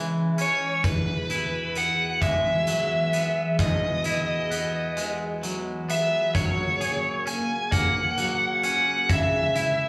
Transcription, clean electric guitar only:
0.00 0.39 C#3 soft
0.00 2.67 E3 soft
0.00 2.22 G#3 soft
0.00 0.37 C#4 soft
0.00 1.30 E4 soft
0.38 0.85 C#4 soft
0.84 3.14 E2 medium
1.30 3.60 E4 soft
1.76 3.12 B3 soft
2.22 4.96 G#3 soft
2.68 5.00 F#3 soft
3.13 4.49 B3 soft
3.59 5.89 E2 medium
4.05 6.35 E4 soft
4.51 5.87 B3 soft
4.97 6.38 G#3 soft
5.43 6.34 F#3 soft
5.89 6.35 B3 soft
6.35 8.17 F#3 medium
6.81 9.55 G#4 soft
7.26 8.62 C#4 soft
7.71 9.10 A#3 soft
8.18 9.10 F#3 soft
8.63 9.10 C#4 soft
9.09 9.89 C#3 medium
9.56 9.89 E4 soft

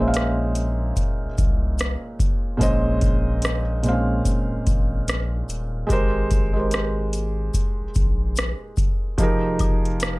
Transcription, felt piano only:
0.00 2.57 A#2 loud
0.00 2.59 G#3 medium
0.00 2.60 C#4 medium
0.00 2.61 C5 loud
0.00 2.63 D#5 loud
0.00 5.92 E5 medium
0.00 5.92 G#5 medium
0.08 1.31 F5 medium
2.57 3.60 A#2 loud
2.57 3.61 G#3 medium
2.57 3.62 C#4 medium
2.61 3.62 C5 loud
2.61 3.63 D#5 loud
3.83 5.15 A#2 medium
3.83 5.15 G#3 medium
3.83 3.93 C4 medium
3.87 5.17 C5 medium
3.87 5.18 F5 medium
3.92 5.19 C#4 medium
5.87 6.39 G#3 loud
5.87 6.40 G4 medium
5.87 6.41 A#4 medium
5.92 6.42 C5 loud
6.53 7.83 G#3 medium
6.53 7.84 G4 medium
6.53 7.85 A#4 medium
6.59 7.86 C5 medium
9.18 10.19 F3 loud
9.18 10.19 D#4 medium
9.18 10.19 G4 loud
9.18 10.19 G#4 medium
9.23 10.19 A#4 loud

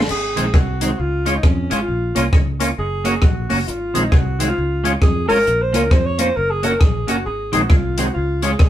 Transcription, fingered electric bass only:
0.10 0.33 G#1 loud
0.38 0.52 A#1 medium
0.54 0.92 C2 loud
1.00 1.37 C#2 loud
1.44 1.67 F2 loud
1.72 1.86 G#1 medium
1.88 2.12 A#1 medium
2.16 2.31 C2 medium
2.33 2.71 C#2 medium
2.79 3.16 F#1 loud
3.23 3.46 A#1 loud
3.51 3.65 F#1 medium
3.69 3.91 G#1 loud
3.96 4.10 A#1 medium
4.13 4.51 C2 loud
4.58 4.96 C#2 loud
5.02 5.26 F2 loud
5.31 5.45 G#1 medium
5.48 5.75 A#1 loud
5.75 5.89 C#2 loud
5.92 6.30 F2 medium
6.37 6.75 F#1 loud
6.81 7.09 A#1 loud
7.09 7.24 F#1 medium
7.26 7.50 G#1 loud
7.54 7.68 A#1 medium
7.70 8.09 C2 loud
8.16 8.54 C#2 medium
8.60 8.69 G#1 loud

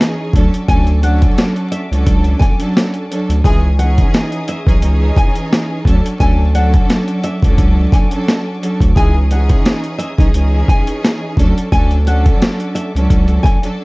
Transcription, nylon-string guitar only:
0.68 1.00 G#5 loud
1.04 1.34 F#5 medium
1.72 1.89 E5 medium
2.39 2.57 G#5 medium
3.45 3.76 G#5 loud
3.79 4.10 F#5 medium
4.49 4.65 E5 medium
5.17 5.34 G#5 medium
6.20 6.51 G#5 loud
6.55 6.86 F#5 medium
7.24 7.41 E5 medium
7.93 8.10 G#5 medium
8.97 9.28 G#5 loud
9.32 9.62 F#5 medium
9.98 10.16 E5 medium
10.69 10.86 G#5 medium
11.72 12.03 G#5 loud
12.07 12.38 F#5 medium
12.75 12.92 E5 medium
13.43 13.60 G#5 medium

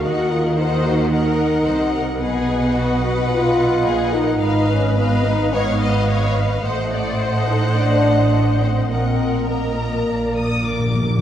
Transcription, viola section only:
0.04 0.57 A#4 medium
0.04 0.57 D#5 medium
0.58 1.11 A#4 medium
0.58 1.11 D#5 medium
1.12 2.20 A#4 medium
1.12 2.20 D#5 medium
2.22 4.41 B4 medium
2.22 4.37 D#5 medium
4.42 4.96 B4 medium
4.42 4.96 D#5 medium
4.97 5.52 B4 medium
4.97 5.52 D#5 medium
5.53 6.62 B4 medium
5.53 6.62 D#5 medium
6.64 8.91 C5 medium
6.64 8.87 D#5 medium
8.91 9.49 A#4 medium
8.91 9.49 D#5 soft
9.50 10.08 A#4 medium
9.50 10.08 D#5 soft
10.09 11.04 A#4 soft
10.09 11.06 D5 soft

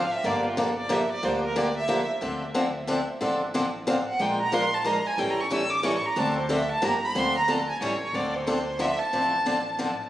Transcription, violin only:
0.00 0.13 F5 medium
0.12 0.28 E5 medium
0.26 0.45 D5 medium
0.46 0.60 F4 soft
0.59 0.77 A4 medium
0.78 0.94 D5 medium
0.92 1.11 E5 medium
1.12 1.27 D5 medium
1.25 1.44 C5 medium
1.45 1.59 A#4 medium
1.58 1.77 D5 medium
1.78 2.07 E5 medium
3.89 4.06 F5 medium
4.08 4.23 F#5 medium
4.21 4.40 G5 medium
4.41 4.56 A#5 loud
4.54 4.76 C6 loud
4.75 4.89 A5 medium
4.87 5.08 A#5 medium
5.07 5.21 G#5 medium
5.19 5.32 G5 medium
5.30 5.42 A#5 medium
5.41 5.54 C#6 medium
5.52 5.72 E6 medium
5.71 5.87 D6 medium
5.86 6.07 C#6 medium
6.06 6.21 A#5 medium
6.19 6.38 A5 medium
6.39 6.54 C5 medium
6.53 6.71 E5 medium
6.71 6.86 A5 medium
6.85 7.07 A#5 medium
7.05 7.20 B5 loud
7.18 7.37 C6 loud
7.37 7.52 A#5 loud
7.51 7.69 A5 medium
7.70 7.81 G#5 medium
7.83 8.01 C#5 medium
8.02 8.17 C#5 medium
8.15 8.36 D5 medium
8.35 8.82 C5 medium
8.80 9.00 E5 medium
8.99 9.98 A5 loud

